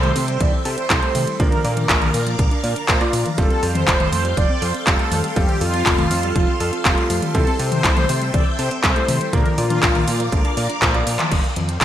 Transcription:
Already playing: C2 G3 C4 E4 A4 C5 E5 G5 C6
0.03 A3, closed hi-hat, high tom
0.16 C3 A3, open hi-hat
0.28 G3, closed hi-hat
0.40 C2 E3 D5, kick, closed hi-hat
0.53 C4
0.65 C3 A4 C5, open hi-hat
0.78 C4, closed hi-hat
0.90 C2 G3 C4 E4 A4, kick, clap, closed hi-hat
1.02 A3, closed hi-hat
1.15 C3 A3, open hi-hat, high tom
1.27 G3, closed hi-hat
1.40 A#1 D3 F3 A#3 D4 A#4 D5 F5 D6, kick, closed hi-hat
1.52 D4, closed hi-hat, high tom
1.64 A#2 D5, open hi-hat
1.77 D4, closed hi-hat, high tom
1.89 A#1 F4 A#4, kick, clap, closed hi-hat
2.02 A#3, closed hi-hat, high tom
2.14 A#2 A#3, open hi-hat
2.26 F3, closed hi-hat
2.39 A#1 D3, kick, closed hi-hat
2.51 D4, closed hi-hat
2.63 A#2 D5, open hi-hat
2.76 D4, closed hi-hat
2.88 A#1 F3 A#3 D4 F4 C5, kick, clap, closed hi-hat
3.01 F3 A#3 D4 D5, closed hi-hat
3.13 A#2 A#3, open hi-hat
3.26 F3, closed hi-hat, high tom
3.38 F1 F3 G3 C4 F4 A4 F5 G5 C6, kick, closed hi-hat
3.50 C4, closed hi-hat
3.63 F2 A4 C5, open hi-hat
3.75 C4, closed hi-hat, high tom
3.88 F1 F4 C5, kick, clap, closed hi-hat
4.00 A3, closed hi-hat, high tom
4.12 F2 A3, open hi-hat
4.25 G3, closed hi-hat
4.37 F1 F3 D5, kick, closed hi-hat
4.50 C4
4.62 F2 A4 C5, open hi-hat
4.74 C4, closed hi-hat
4.87 F1 G3 C4 F4 A4, kick, clap, closed hi-hat
4.99 A3, closed hi-hat
5.12 F2 A3, open hi-hat, high tom
5.24 G3, closed hi-hat
5.36 F1 F3 G3 C4 F4 G4 A4 A5, kick, closed hi-hat
5.49 C4, closed hi-hat, high tom
5.61 F2 F4 A4, open hi-hat
5.74 C4, closed hi-hat
5.86 F1 F4, kick, clap, closed hi-hat
5.98 A3, closed hi-hat, high tom
6.11 F2 A3, open hi-hat
6.23 G3, closed hi-hat
6.36 F1 F3, kick, closed hi-hat
6.48 C4
6.60 F2 A4, open hi-hat
6.73 C4, closed hi-hat
6.85 F1 G3 C4 F4 A4, kick, clap, closed hi-hat
6.98 A3, closed hi-hat
7.10 F2 A3, open hi-hat
7.22 G3, closed hi-hat, high tom
7.35 C2 E3 G3 C4 E4 A4 E5 G5, kick, closed hi-hat
7.47 C4, closed hi-hat
7.59 C3 A4 C5, open hi-hat
7.72 C4, closed hi-hat, high tom
7.84 C2 E4 C5, kick, clap, closed hi-hat
7.97 A3, closed hi-hat, high tom
8.09 C3 A3, open hi-hat
8.22 G3, closed hi-hat
8.34 C2 E3 D5, kick, closed hi-hat
8.46 C4
8.59 C3 A4 C5, open hi-hat
8.71 C4, closed hi-hat
8.83 C2 G3 C4 E4 A4 C5, kick, clap, closed hi-hat
8.96 A3, closed hi-hat
9.08 C3 A3, open hi-hat, high tom
9.21 G3, closed hi-hat
9.33 A#1 D3 F3 A#3 D4 A#4 D5 F5 D6, kick, closed hi-hat
9.46 D4, closed hi-hat, high tom
9.58 A#2 F4 D5, open hi-hat
9.70 D4, closed hi-hat, high tom
9.83 A#1 F4, kick, clap, closed hi-hat
9.95 A#3, closed hi-hat, high tom
10.08 A#2 A#3, open hi-hat
10.20 F3, closed hi-hat
10.32 A#1 D3, kick, closed hi-hat
10.45 D4, closed hi-hat
10.57 A#2 D5, open hi-hat
10.70 D4, closed hi-hat
10.82 A#1 F3 A#3 D4 F4 C5, kick, clap, closed hi-hat
10.94 F3 A#3 D4 D5, closed hi-hat
11.07 A#2 A#3, open hi-hat
11.19 F3, clap, closed hi-hat, high tom
11.32 F1 A4 F5 G5 C6, kick, closed hi-hat, crash
11.44 closed hi-hat
11.56 F2, closed hi-hat, high tom
11.69 closed hi-hat
11.81 F1, kick, clap, closed hi-hat

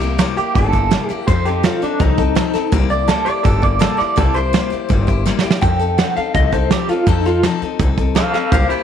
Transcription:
Already playing: C2
0.00 A#3 E4 G4, closed hi-hat
0.18 C3 G3 A#3 E4 G4, snare, closed hi-hat
0.36 A#3 E4 G4, muted upright bass stroke, closed hi-hat
0.55 G1 G3 A#3 E4 G4 A4, kick, closed hi-hat
0.73 A#3 E4 G4, kick, closed hi-hat
0.91 C3 G3 A#3 E4 G4, snare, closed hi-hat
1.09 A#3 E4 G4, muted upright bass stroke, closed hi-hat
1.27 F2 F3 C4 D#4 A4 C5, kick, closed hi-hat
1.45 C4 D#4 G4 A4, closed hi-hat
1.63 F3 C4 D#4 F4 A4, snare, closed hi-hat
1.82 C4 D4 D#4 A4, muted upright bass stroke, closed hi-hat
1.99 C2 F3 C4 D#4 A4, kick, closed hi-hat
2.18 C4 D#4 A4, kick, closed hi-hat
2.35 F3 C4 D#4 A4, snare, closed hi-hat
2.53 C4 D#4 A4, muted upright bass stroke, snare, closed hi-hat
2.72 C2 C3 G3 A#3 E4 G4, kick, closed hi-hat
2.90 A#3 E4 G4 D5, closed hi-hat
3.08 C3 G3 A#3 E4 G4 A4, snare, closed hi-hat
3.25 E4 G4 D5, muted upright bass stroke, closed hi-hat
3.29 A#3
3.43 G1 G3 A#3 E4 G4 A4, kick, closed hi-hat
3.62 A#3 E4 G4 D5, kick, closed hi-hat
3.79 C3 G3 A#3 E4 G4 A4, snare, closed hi-hat
3.97 A#3 E4 G4 D5, muted upright bass stroke, snare, closed hi-hat
4.16 C2 C3 G3 A#3 E4 G4 A4, kick, closed hi-hat
4.34 A#3 E4 G4 C5, closed hi-hat
4.53 C3 G3 A#3 E4 G4, snare, closed hi-hat
4.70 A#3 E4 G4, muted upright bass stroke, closed hi-hat
4.89 G1 G3 A#3 E4 G4, kick, closed hi-hat
5.07 A#3 E4 G4, kick, closed hi-hat
5.26 C3 G3 A#3 E4 G4, snare
5.39 snare
5.44 A#3 E4 G4, muted upright bass stroke
5.50 snare
5.61 F2 F3 C4 D#4 A4 G5, kick, closed hi-hat
5.79 C4 D#4 A4, closed hi-hat
5.98 F3 C4 D#4 A4 F#5, snare, closed hi-hat
6.16 C4 D#4 A4 F5, muted upright bass stroke, closed hi-hat
6.34 C2 F3 C4 D#4 A4 D#5, kick, closed hi-hat
6.52 C4 D#4 A4 C5, kick, closed hi-hat
6.71 F3 C4 D#4 G4 A4, snare, closed hi-hat
6.89 D#4 F4 A4, muted upright bass stroke, snare, closed hi-hat
6.93 C4
7.06 F2 F3 C4 D#4 A4, kick, closed hi-hat
7.25 C4 D#4 F4 A4, closed hi-hat
7.43 F3 C4 D#4 A4, snare, closed hi-hat
7.62 C4 D#4 A4, muted upright bass stroke, closed hi-hat
7.79 C2 F3 C4 D#4 A4, kick, closed hi-hat
7.98 C4 D#4 A4, kick, closed hi-hat
8.15 F3 C4 D#4 A4 F5, snare, closed hi-hat
8.34 C4 D#4 A4 F5, muted upright bass stroke, snare, closed hi-hat
8.52 C2 C3 G3 A#3 E4 G4 C5 F5, kick, closed hi-hat
8.69 A#3 E4 G4 C5, muted upright bass stroke, closed hi-hat

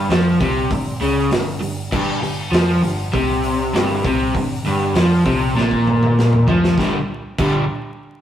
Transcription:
0.09 F2 F3, snare, open hi-hat
0.41 C2 C3, kick, open hi-hat
0.70 G1 G2, kick, open hi-hat
1.00 C#2 C#3, open hi-hat
1.31 G1 G2, snare, open hi-hat
1.61 G1 G2, open hi-hat
1.92 G1 G2, kick, crash
2.21 G1 G2, open hi-hat
2.52 F2 F3, snare, open hi-hat
2.82 G1 G2, open hi-hat
3.13 C2 C3, kick, open hi-hat
3.44 open hi-hat
3.73 G1 G2, snare, open hi-hat
4.04 C2 C3, kick, open hi-hat
4.34 G1 G2, kick, open hi-hat
4.63 G1 G2, open hi-hat
4.94 F2 F3, snare, open hi-hat
5.25 C2 C3, kick, open hi-hat
5.55 A#1 A#2, snare
5.71 kick
5.87 mid tom
6.03 mid tom
6.19 snare
6.33 mid tom
6.47 F2 F3, floor tom
6.64 snare
6.78 G1 G2 D3 G3, kick, snare
7.38 G1 G2 D3 G3, kick, crash

